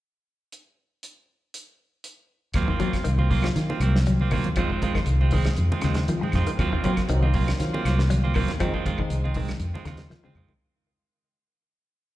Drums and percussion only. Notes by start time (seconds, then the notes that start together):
0.52 closed hi-hat
1.03 closed hi-hat
1.54 closed hi-hat
2.04 closed hi-hat
2.54 kick, snare, closed hi-hat, high conga, low conga, claves
2.68 kick
2.80 kick, closed hi-hat, high conga
2.93 kick, snare, closed hi-hat, claves
3.05 closed hi-hat, high conga
3.19 high conga
3.31 kick, open hi-hat, low conga
3.43 snare, closed hi-hat, claves
3.56 snare, closed hi-hat, high conga
3.70 high conga
3.81 closed hi-hat, claves
3.96 snare
4.06 closed hi-hat, high conga
4.20 high conga
4.31 kick, open hi-hat, low conga, claves
4.44 closed hi-hat, high conga
4.56 kick, closed hi-hat, high conga, low conga, claves
4.70 kick
4.82 kick, closed hi-hat, high conga, low conga
4.95 kick, snare, claves
5.06 closed hi-hat
5.21 high conga
5.31 kick, open hi-hat, low conga
5.45 snare, closed hi-hat, claves
5.56 closed hi-hat, high conga
5.72 high conga
5.81 snare, closed hi-hat, claves
5.94 snare, closed hi-hat
6.08 closed hi-hat, high conga
6.23 high conga
6.32 kick, snare, closed hi-hat, low conga, claves
6.46 closed hi-hat, high conga
6.59 kick, closed hi-hat, high conga, low conga, claves
6.72 kick
6.84 kick, closed hi-hat, high conga, low conga
6.97 kick, snare, closed hi-hat, claves
7.09 closed hi-hat
7.23 high conga
7.34 kick, open hi-hat, low conga
7.48 snare, closed hi-hat, claves
7.60 snare, closed hi-hat, high conga
7.74 high conga
7.85 snare, closed hi-hat, claves
7.99 snare
8.10 closed hi-hat, high conga
8.25 high conga
8.34 kick, open hi-hat, low conga, claves
8.48 snare, closed hi-hat
8.60 kick, closed hi-hat, claves
8.74 kick
8.86 kick, closed hi-hat, high conga, low conga
8.98 kick, claves
9.10 closed hi-hat, high conga
9.25 high conga
9.34 kick, open hi-hat, low conga
9.48 snare, closed hi-hat, claves
9.60 closed hi-hat, high conga
9.75 high conga
9.85 snare, closed hi-hat, claves
9.97 snare, closed hi-hat
10.10 snare, high conga
10.26 high conga
10.35 mid tom, low conga, claves
10.49 floor tom, high conga